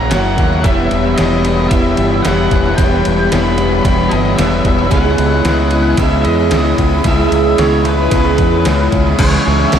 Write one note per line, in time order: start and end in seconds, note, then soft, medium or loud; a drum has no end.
0.00 0.10 A#1 loud
0.00 0.12 F#2 medium
0.00 0.11 C#3 medium
0.00 0.12 E3 soft
0.00 0.11 F#3 loud
0.00 0.38 F#3 medium
0.00 0.12 A#3 medium
0.00 0.10 C#4 medium
0.00 0.13 C#4 loud
0.00 0.11 E4 loud
0.00 0.14 E4 medium
0.00 0.12 F#4 medium
0.00 0.13 F#4 medium
0.00 0.11 A#4 medium
0.00 0.12 C#5 medium
0.00 0.13 C#5 loud
0.00 0.62 C#5 medium
0.00 0.61 F#5 medium
0.00 0.12 A#5 medium
0.00 0.61 A#5 medium
0.10 0.37 F#1 medium
0.10 0.37 F#2 medium
0.10 0.37 C#3 medium
0.10 0.65 E3 medium
0.10 0.38 F#3 medium
0.10 0.38 A#3 medium
0.10 0.65 C#4 medium
0.10 0.40 C#4 medium
0.10 0.65 E4 medium
0.10 0.64 A#4 medium
0.10 0.69 C#5 medium
0.10 0.66 C#5 medium
0.10 0.66 F#5 medium
0.10 snare loud
0.10 ride medium
0.14 0.67 E4 medium
0.14 0.39 F#4 medium
0.38 0.64 D#2 medium
0.38 0.63 F#2 medium
0.38 0.63 C#3 medium
0.38 0.64 F#3 medium
0.38 0.64 A#3 medium
0.38 0.66 C#4 medium
0.38 0.65 F#4 medium
0.38 kick medium
0.38 ride medium
0.64 0.90 E1 medium
0.64 1.71 E3 medium
0.64 1.17 E3 medium
0.64 1.48 G3 medium
0.64 1.17 G3 medium
0.64 1.18 B3 medium
0.64 1.18 B3 loud
0.64 1.18 E4 medium
0.64 1.19 E4 loud
0.64 1.73 G4 medium
0.64 4.89 G4 medium
0.64 1.19 B4 medium
0.64 9.17 C#5 medium
0.64 1.20 C#5 medium
0.64 1.16 E5 medium
0.64 9.17 B5 medium
0.64 kick loud
0.64 ride medium
0.91 1.17 E1 medium
0.91 ride medium
1.16 1.70 E1 medium
1.16 1.44 E3 medium
1.16 1.45 G3 medium
1.16 1.47 B3 medium
1.16 1.45 B3 medium
1.16 1.47 E4 medium
1.16 1.46 E4 medium
1.16 2.26 B4 medium
1.16 1.45 B4 medium
1.16 1.68 D#5 medium
1.16 snare medium
1.16 ride medium
1.21 1.44 C#5 medium
1.45 1.71 E3 medium
1.45 1.71 G3 medium
1.45 1.72 B3 medium
1.45 1.73 B3 medium
1.45 1.73 E4 medium
1.45 1.73 B4 medium
1.45 1.74 C#5 medium
1.45 ride medium
1.69 1.97 E1 medium
1.69 2.24 E3 medium
1.69 2.77 E3 medium
1.69 2.24 G3 medium
1.69 2.25 B3 loud
1.69 2.25 E5 medium
1.69 kick loud
1.69 ride medium
1.73 2.52 G3 medium
1.73 2.24 B3 medium
1.73 2.25 E4 loud
1.73 2.26 E4 loud
1.73 2.25 G4 medium
1.73 2.26 B4 loud
1.73 2.27 C#5 loud
1.97 2.24 G1 medium
1.97 2.23 G3 medium
1.97 2.26 B3 medium
1.97 2.26 E4 medium
1.97 ride medium
2.22 2.51 E1 medium
2.22 2.50 E3 medium
2.22 2.50 G3 medium
2.22 2.52 B3 medium
2.22 2.79 E4 medium
2.22 3.32 B4 medium
2.22 2.75 F#5 medium
2.22 snare loud
2.22 ride medium
2.27 2.53 E4 medium
2.50 2.77 E1 medium
2.50 2.78 E3 medium
2.50 2.78 G3 medium
2.50 2.79 B3 medium
2.50 2.80 E4 medium
2.50 kick medium
2.50 ride medium
2.66 snare soft
2.75 3.04 E1 medium
2.75 3.84 E3 medium
2.75 3.31 E3 medium
2.75 3.59 G3 medium
2.75 3.31 G3 medium
2.75 3.30 B3 medium
2.75 3.31 E4 medium
2.75 3.32 G4 medium
2.75 3.32 G5 medium
2.75 kick medium
2.75 ride medium
2.80 3.32 B3 loud
2.80 3.33 E4 medium
2.80 3.32 B4 loud
2.80 3.33 C#5 loud
3.05 3.31 E1 medium
3.05 ride medium
3.29 3.83 E1 medium
3.29 3.58 E3 medium
3.29 3.59 G3 medium
3.29 3.60 B3 medium
3.29 3.59 E4 medium
3.29 4.38 B4 medium
3.29 3.58 B4 medium
3.29 3.82 B5 loud
3.29 snare loud
3.29 ride medium
3.34 3.60 E4 medium
3.34 3.57 C#5 medium
3.57 3.85 E3 medium
3.57 3.85 G3 medium
3.57 3.86 B3 medium
3.57 3.85 B3 medium
3.57 3.86 E4 medium
3.57 3.87 E4 medium
3.57 3.86 B4 medium
3.57 3.87 C#5 medium
3.57 ride medium
3.83 4.11 E1 medium
3.83 4.91 E3 loud
3.83 4.38 E3 medium
3.83 4.65 G3 loud
3.83 4.38 G3 medium
3.83 4.38 B3 medium
3.83 4.39 B3 loud
3.83 4.39 E4 medium
3.83 4.38 G4 medium
3.83 4.39 B4 loud
3.83 4.40 C#5 loud
3.83 4.12 B5 loud
3.83 kick loud
3.83 ride medium
3.88 4.40 E4 loud
4.09 4.38 G1 medium
4.09 4.38 G3 medium
4.09 4.39 B3 medium
4.09 4.40 E4 medium
4.09 4.36 D#5 medium
4.09 ride medium
4.36 4.65 E1 medium
4.36 4.65 E3 medium
4.36 4.65 G3 medium
4.36 4.92 B3 medium
4.36 4.67 B3 medium
4.36 4.92 E4 medium
4.36 5.46 B4 medium
4.36 4.93 E5 medium
4.36 snare loud
4.36 ride medium
4.41 4.67 E4 medium
4.41 4.93 C#5 medium
4.65 4.91 E1 medium
4.65 4.91 E3 medium
4.65 4.91 G3 medium
4.65 4.92 B3 medium
4.65 4.93 E4 medium
4.65 kick medium
4.65 ride medium
4.79 snare soft
4.91 5.17 C#2 medium
4.91 5.75 C#3 medium
4.91 5.45 C#3 medium
4.91 5.98 G#3 medium
4.91 5.46 G#3 medium
4.91 5.44 B3 medium
4.91 5.46 C#4 loud
4.91 9.16 E4 medium
4.91 5.45 E4 medium
4.91 5.47 E4 loud
4.91 5.99 G#4 medium
4.91 5.46 G#4 medium
4.91 5.47 D#5 loud
4.91 6.02 F#5 loud
4.91 9.16 D#6 medium
4.91 kick medium
4.91 ride medium
5.18 5.45 C#2 medium
5.18 ride medium
5.45 5.96 C#2 medium
5.45 5.71 C#3 medium
5.45 5.71 G#3 medium
5.45 5.74 B3 medium
5.45 5.72 C#4 medium
5.45 5.73 E4 medium
5.45 5.72 G#4 medium
5.45 5.99 B4 medium
5.45 5.71 D#5 medium
5.45 snare loud
5.45 ride medium
5.71 5.97 C#3 medium
5.71 5.98 G#3 medium
5.71 5.98 B3 medium
5.71 5.98 C#4 medium
5.71 5.99 E4 medium
5.71 6.00 G#4 medium
5.71 5.99 D#5 medium
5.71 ride medium
5.97 6.24 C#2 medium
5.97 6.50 C#3 medium
5.97 7.05 C#3 medium
5.97 6.51 G#3 medium
5.97 7.06 G#3 medium
5.97 6.50 B3 medium
5.97 6.52 C#4 loud
5.97 6.52 E4 loud
5.97 6.53 G#4 medium
5.97 6.53 D#5 loud
5.97 6.24 E5 medium
5.97 kick medium
5.97 ride medium
6.24 6.51 E2 medium
6.24 6.52 G#3 medium
6.24 6.52 C#4 medium
6.24 6.53 E4 medium
6.24 6.75 D#5 medium
6.24 ride medium
6.50 6.77 C#2 medium
6.50 6.78 C#3 medium
6.50 6.78 G#3 medium
6.50 7.06 B3 medium
6.50 6.79 C#4 medium
6.50 6.80 E4 medium
6.50 7.06 E4 medium
6.50 7.07 G#4 medium
6.50 7.06 B4 medium
6.50 7.07 D#5 medium
6.50 snare loud
6.50 ride medium
6.78 7.04 C#2 medium
6.78 7.04 C#3 medium
6.78 7.04 G#3 medium
6.78 7.05 C#4 medium
6.78 7.06 E4 medium
6.78 kick medium
6.78 ride medium
7.04 7.31 C#2 medium
7.04 7.57 C#3 medium
7.04 7.86 C#3 medium
7.04 7.58 G#3 medium
7.04 7.87 G#3 medium
7.04 7.58 B3 medium
7.04 7.58 C#4 medium
7.04 7.59 E4 loud
7.04 7.59 E4 medium
7.04 7.58 G#4 medium
7.04 7.59 G#4 medium
7.04 7.59 E5 loud
7.04 kick medium
7.04 ride medium
7.09 7.60 D#5 medium
7.32 7.58 C#2 medium
7.32 ride medium
7.58 8.10 C#2 medium
7.58 7.83 C#3 medium
7.58 7.84 G#3 medium
7.58 7.87 B3 medium
7.58 7.84 C#4 medium
7.58 7.86 E4 medium
7.58 7.85 E4 medium
7.58 7.85 G#4 medium
7.58 8.12 B4 medium
7.58 7.87 C#5 medium
7.58 7.84 D#5 medium
7.58 snare loud
7.58 ride medium
7.85 8.09 C#3 medium
7.85 8.10 G#3 medium
7.85 8.12 B3 medium
7.85 8.11 C#4 medium
7.85 8.12 E4 medium
7.85 8.13 G#4 medium
7.85 8.88 B4 medium
7.85 8.14 D#5 medium
7.85 ride medium
8.10 8.38 C#2 medium
8.10 8.63 C#3 medium
8.10 8.93 C#3 medium
8.10 8.64 G#3 medium
8.10 8.93 G#3 loud
8.10 8.65 B3 loud
8.10 8.65 C#4 medium
8.10 8.65 E4 medium
8.10 8.66 E4 loud
8.10 8.66 G#4 medium
8.10 kick loud
8.10 ride medium
8.15 8.67 D#5 medium
8.38 8.65 E2 medium
8.38 8.65 G#3 medium
8.38 8.66 C#4 medium
8.38 8.66 E4 medium
8.38 kick medium
8.38 ride medium
8.65 8.92 C#2 medium
8.65 8.90 C#3 medium
8.65 8.91 G#3 medium
8.65 9.18 B3 medium
8.65 8.91 C#4 medium
8.65 8.92 E4 medium
8.65 9.19 E4 medium
8.65 9.19 G#4 medium
8.65 9.20 B4 medium
8.65 9.19 D#5 medium
8.65 snare loud
8.65 ride medium
8.91 9.18 C#2 medium
8.91 9.17 C#3 medium
8.91 9.18 G#3 medium
8.91 9.18 C#4 medium
8.91 9.19 E4 medium
8.91 kick medium
8.91 ride medium
9.07 snare soft
9.18 9.36 C#2 medium
9.18 9.43 C#3 loud
9.18 9.79 C#3 medium
9.18 9.43 E3 medium
9.18 9.79 E3 loud
9.18 9.44 G#3 loud
9.18 9.79 G#3 loud
9.18 9.46 C#4 loud
9.18 9.79 C#4 loud
9.18 9.73 G#4 medium
9.18 9.79 G#4 loud
9.18 9.79 C#5 loud
9.18 9.79 C#5 medium
9.18 9.79 E5 medium
9.18 9.79 G#5 medium
9.18 9.79 E6 loud
9.18 kick loud
9.18 crash loud
9.18 crash medium
9.44 9.64 C#2 medium
9.44 9.71 C#3 medium
9.44 9.72 E3 medium
9.44 9.72 G#3 medium
9.44 9.73 C#4 medium
9.72 9.79 C#2 medium
9.72 9.79 C#3 medium
9.72 9.79 E3 medium
9.72 9.79 G#3 medium
9.72 9.79 C#4 medium
9.72 9.79 A#4 medium
9.72 snare loud
9.72 crash medium